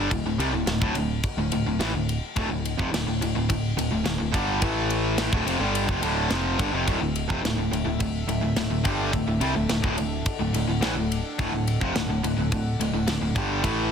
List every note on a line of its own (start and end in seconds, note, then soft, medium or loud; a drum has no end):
0.00 0.10 G2 medium
0.00 0.11 D3 loud
0.00 0.11 G3 loud
0.11 0.23 D1 medium
0.11 0.24 D2 medium
0.11 0.25 A2 medium
0.11 kick medium
0.11 ride medium
0.24 0.37 D1 medium
0.24 0.39 D2 medium
0.24 0.40 A2 medium
0.38 0.52 C2 medium
0.38 0.53 C3 medium
0.38 0.53 G3 medium
0.38 ride medium
0.52 0.65 D1 medium
0.52 0.67 D2 medium
0.52 0.67 A2 medium
0.66 0.80 D1 medium
0.66 0.81 D2 medium
0.66 0.81 A2 medium
0.66 snare loud
0.66 ride medium
0.81 0.94 D1 medium
0.81 0.95 D2 medium
0.81 0.95 A2 loud
0.81 kick loud
0.95 1.22 D1 medium
0.95 1.18 D2 medium
0.95 1.19 A2 medium
0.95 ride medium
1.23 kick loud
1.23 ride medium
1.37 1.50 D1 medium
1.37 1.51 D2 medium
1.37 1.52 A2 medium
1.52 1.65 D1 medium
1.52 1.65 D2 medium
1.52 1.66 A2 medium
1.52 ride medium
1.66 1.79 D1 medium
1.66 1.79 D2 medium
1.66 1.79 A2 medium
1.80 1.93 A1 medium
1.80 1.93 A2 medium
1.80 1.94 E3 medium
1.80 snare loud
1.80 ride medium
1.94 2.20 D1 medium
1.94 2.17 D2 medium
1.94 2.17 A2 medium
2.09 ride medium
2.36 2.49 D1 medium
2.36 2.49 D2 loud
2.36 2.50 A2 loud
2.36 kick medium
2.36 ride medium
2.51 2.77 D1 medium
2.51 2.73 D2 medium
2.51 2.74 A2 medium
2.65 ride medium
2.79 2.92 F1 medium
2.79 2.92 F2 medium
2.79 2.93 C3 loud
2.79 kick loud
2.92 3.06 D1 medium
2.92 3.06 D2 medium
2.92 3.07 A2 medium
2.92 snare loud
2.92 ride loud
3.07 3.20 D1 medium
3.07 3.20 D2 medium
3.07 3.20 A2 medium
3.21 3.35 D1 medium
3.21 3.34 D2 medium
3.21 3.34 A2 medium
3.21 ride medium
3.35 3.49 D1 medium
3.35 3.48 D2 medium
3.35 3.48 A2 medium
3.49 3.76 D1 medium
3.49 3.72 D2 medium
3.49 3.72 A2 medium
3.49 kick medium
3.49 ride loud
3.77 3.91 D1 medium
3.77 3.91 D2 medium
3.77 3.91 A2 medium
3.77 ride medium
3.92 4.05 D1 medium
3.92 4.05 D2 medium
3.92 4.05 A2 medium
4.06 4.19 D1 medium
4.06 4.19 D2 medium
4.06 4.19 A2 medium
4.06 snare loud
4.06 ride medium
4.20 4.33 D1 medium
4.20 4.33 D2 medium
4.20 4.34 A2 medium
4.34 4.60 G1 loud
4.34 4.61 G2 medium
4.34 4.62 D3 loud
4.34 4.62 G3 loud
4.34 kick medium
4.34 ride medium
4.62 5.29 A1 medium
4.62 5.32 A2 medium
4.62 5.32 E3 medium
4.62 5.32 A3 loud
4.62 kick medium
4.62 ride medium
4.90 ride medium
5.18 snare loud
5.18 ride loud
5.32 5.44 D1 medium
5.32 5.46 D2 medium
5.32 5.47 A2 loud
5.32 kick loud
5.45 5.59 F1 medium
5.45 5.61 F2 medium
5.45 ride medium
5.49 5.61 C3 medium
5.59 5.86 G1 loud
5.59 5.89 G2 medium
5.59 5.89 D3 loud
5.64 5.90 G3 loud
5.75 ride medium
5.89 6.01 F1 loud
5.89 6.02 F2 medium
5.89 6.03 C3 medium
5.89 kick loud
6.02 6.29 D1 medium
6.02 6.31 D2 medium
6.02 6.31 A2 medium
6.02 6.31 D3 medium
6.02 ride medium
6.30 6.57 F1 medium
6.30 6.58 F2 medium
6.30 6.59 C3 medium
6.30 6.59 F3 loud
6.30 snare loud
6.30 ride medium
6.59 6.72 G1 medium
6.59 6.73 G2 medium
6.59 6.73 D3 loud
6.59 kick loud
6.59 ride medium
6.73 6.86 F1 medium
6.73 6.87 F2 medium
6.73 6.87 C3 medium
6.87 7.00 D1 medium
6.87 7.01 D2 medium
6.87 7.01 A2 loud
6.87 13.60 D4 medium
6.87 13.60 A4 medium
6.87 10.22 E5 medium
6.87 kick medium
6.87 ride medium
7.01 7.27 D1 medium
7.01 7.25 D2 medium
7.01 7.25 A2 medium
7.16 ride medium
7.30 7.44 F2 medium
7.30 7.44 C3 loud
7.30 kick medium
7.43 7.56 D1 medium
7.43 7.57 D2 medium
7.43 7.57 A2 medium
7.43 snare loud
7.43 ride medium
7.57 7.70 D1 medium
7.57 7.71 D2 medium
7.57 7.72 A2 medium
7.71 7.85 D1 medium
7.71 7.83 D2 medium
7.71 7.84 A2 medium
7.71 ride medium
7.84 7.99 D1 medium
7.84 7.99 D2 medium
7.84 8.00 A2 medium
8.00 8.27 D1 medium
8.00 8.23 D2 medium
8.00 8.23 A2 medium
8.00 kick medium
8.00 ride loud
8.27 8.41 D1 medium
8.27 8.41 D2 medium
8.27 8.42 A2 medium
8.27 ride medium
8.42 8.55 D1 medium
8.42 8.55 D2 medium
8.42 8.56 A2 medium
8.56 8.69 D1 medium
8.56 8.69 D2 medium
8.56 8.70 A2 medium
8.56 snare loud
8.56 ride medium
8.70 8.83 D1 medium
8.70 8.83 D2 medium
8.70 8.84 A2 medium
8.84 9.11 G1 medium
8.84 9.12 G2 medium
8.84 9.12 D3 loud
8.84 9.12 G3 loud
8.84 kick loud
8.84 ride medium
9.13 9.26 D1 medium
9.13 9.26 D2 medium
9.13 9.26 A2 medium
9.13 kick medium
9.13 ride medium
9.27 9.40 D1 medium
9.27 9.40 D2 medium
9.27 9.40 A2 medium
9.40 9.54 C2 medium
9.40 9.54 C3 medium
9.40 9.54 G3 medium
9.40 ride medium
9.55 9.69 D1 medium
9.55 9.68 D2 medium
9.55 9.69 A2 medium
9.69 9.83 D1 medium
9.69 9.81 D2 medium
9.69 9.83 A2 medium
9.69 snare loud
9.69 ride medium
9.82 9.97 D1 medium
9.82 9.95 D2 medium
9.82 9.96 A2 loud
9.82 kick loud
9.97 10.24 D1 medium
9.97 10.20 D2 medium
9.97 10.20 A2 medium
9.97 ride medium
10.25 13.60 F#5 medium
10.25 kick loud
10.25 ride loud
10.39 10.53 D1 medium
10.39 10.52 D2 medium
10.39 10.53 A2 medium
10.53 10.66 D1 medium
10.53 10.66 D2 medium
10.53 10.66 A2 medium
10.53 ride medium
10.67 10.80 D1 medium
10.67 10.81 D2 medium
10.67 10.80 A2 medium
10.81 10.95 A1 medium
10.81 10.95 A2 medium
10.81 10.95 E3 medium
10.81 snare loud
10.81 ride medium
10.95 11.22 D1 medium
10.95 11.18 D2 medium
10.95 11.19 A2 medium
11.12 ride medium
11.39 11.51 D1 medium
11.39 11.52 D2 loud
11.39 11.52 A2 loud
11.39 kick loud
11.39 ride medium
11.52 11.78 D1 medium
11.52 11.76 D2 medium
11.52 11.76 A2 medium
11.67 ride medium
11.81 11.94 F1 loud
11.81 11.94 F2 medium
11.81 11.95 C3 medium
11.81 kick loud
11.95 12.07 D1 medium
11.95 12.09 D2 medium
11.95 12.09 A2 medium
11.95 snare loud
11.95 ride medium
12.08 12.21 D1 medium
12.08 12.23 D2 medium
12.08 12.23 A2 medium
12.23 12.36 D1 medium
12.23 12.36 D2 medium
12.23 12.36 A2 medium
12.23 ride medium
12.37 12.50 D1 medium
12.37 12.51 D2 medium
12.37 12.51 A2 medium
12.51 12.78 D1 medium
12.51 12.74 D2 medium
12.51 12.74 A2 medium
12.51 kick medium
12.51 ride medium
12.79 12.92 D1 medium
12.79 12.92 D2 medium
12.79 12.92 A2 medium
12.79 ride medium
12.92 13.06 D1 medium
12.92 13.05 D2 medium
12.92 13.06 A2 medium
13.06 13.20 D1 medium
13.06 13.20 D2 medium
13.06 13.20 A2 medium
13.06 snare loud
13.06 ride medium
13.21 13.34 D1 medium
13.21 13.35 D2 medium
13.21 13.36 A2 medium
13.35 13.62 G1 loud
13.35 13.63 G2 medium
13.35 13.63 D3 medium
13.35 13.63 G3 loud
13.35 kick loud
13.35 ride medium
13.63 13.92 A1 medium
13.63 13.92 A2 medium
13.63 13.92 E3 loud
13.63 13.92 A3 medium
13.63 13.92 E4 medium
13.63 13.92 B4 medium
13.63 kick medium
13.63 ride medium